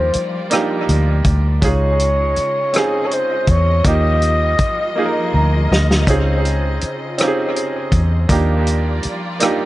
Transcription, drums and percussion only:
0.13 closed hi-hat
0.51 cross-stick, closed hi-hat
0.89 closed hi-hat
1.24 kick, closed hi-hat
1.62 kick, closed hi-hat
1.99 closed hi-hat
2.36 closed hi-hat
2.74 cross-stick, closed hi-hat
3.11 closed hi-hat
3.47 kick, closed hi-hat
3.84 kick, closed hi-hat
4.22 closed hi-hat
4.58 kick, closed hi-hat
5.72 snare
5.91 snare
6.07 kick, closed hi-hat
6.45 closed hi-hat
6.81 closed hi-hat
7.18 cross-stick, closed hi-hat
7.56 closed hi-hat
7.92 kick, closed hi-hat
8.29 kick, closed hi-hat
8.67 closed hi-hat
9.03 closed hi-hat
9.40 cross-stick, closed hi-hat

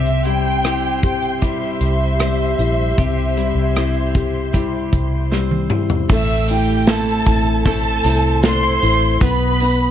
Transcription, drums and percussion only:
0.06 closed hi-hat
0.25 closed hi-hat
0.64 cross-stick, closed hi-hat
1.03 kick, closed hi-hat
1.22 closed hi-hat
1.42 kick, closed hi-hat
1.81 closed hi-hat
2.20 cross-stick, closed hi-hat
2.59 closed hi-hat
2.98 kick, closed hi-hat
3.37 closed hi-hat
3.76 cross-stick, closed hi-hat
4.15 kick, closed hi-hat
4.54 kick, closed hi-hat
4.93 kick, closed hi-hat
5.32 snare
5.51 high tom
5.70 mid tom
5.90 floor tom
6.09 kick, crash
6.48 hi-hat pedal, open hi-hat
6.87 snare, hi-hat pedal, open hi-hat
7.26 kick, hi-hat pedal, open hi-hat
7.65 kick, hi-hat pedal, open hi-hat
8.04 hi-hat pedal, open hi-hat
8.43 snare, hi-hat pedal, open hi-hat
8.82 hi-hat pedal, open hi-hat
9.21 kick, hi-hat pedal, open hi-hat
9.60 hi-hat pedal, open hi-hat

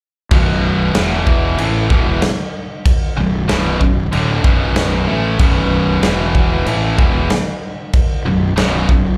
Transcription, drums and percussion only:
0.31 kick, crash
0.95 snare, crash
1.27 kick
1.58 crash
1.90 kick
2.22 snare, crash
2.86 kick, crash
3.49 snare, crash
3.81 kick
4.13 crash
4.44 kick
4.76 snare, crash
5.39 kick, crash
6.03 snare, crash
6.35 kick
6.66 crash
6.99 kick
7.30 snare, crash
7.93 kick, crash
8.57 snare, crash
8.89 kick

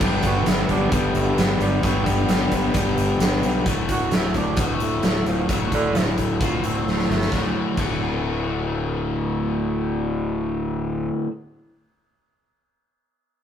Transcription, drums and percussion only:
0.01 kick, crash
0.23 kick, closed hi-hat
0.46 snare, closed hi-hat
0.69 kick, closed hi-hat
0.92 kick, closed hi-hat
1.15 closed hi-hat
1.38 snare, closed hi-hat
1.61 closed hi-hat
1.83 kick, closed hi-hat
2.06 kick, closed hi-hat
2.29 snare, closed hi-hat
2.51 kick, closed hi-hat
2.74 kick, closed hi-hat
2.98 closed hi-hat
3.20 snare, closed hi-hat
3.33 snare
3.43 closed hi-hat
3.66 kick, closed hi-hat
3.89 kick, closed hi-hat
4.11 snare, closed hi-hat
4.34 kick, closed hi-hat
4.57 kick, closed hi-hat
4.80 closed hi-hat
5.03 snare, closed hi-hat
5.26 closed hi-hat
5.49 kick, closed hi-hat
5.72 kick, closed hi-hat
5.95 snare, closed hi-hat
6.18 kick, closed hi-hat
6.41 kick, closed hi-hat
6.64 closed hi-hat
6.87 snare
6.99 snare
7.10 snare
7.21 snare
7.32 kick, snare
7.77 kick, crash

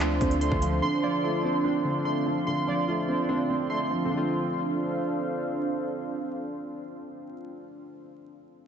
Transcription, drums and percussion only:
0.00 clap, closed hi-hat
0.21 kick, closed hi-hat
0.31 closed hi-hat
0.41 closed hi-hat
0.52 kick
0.62 closed hi-hat

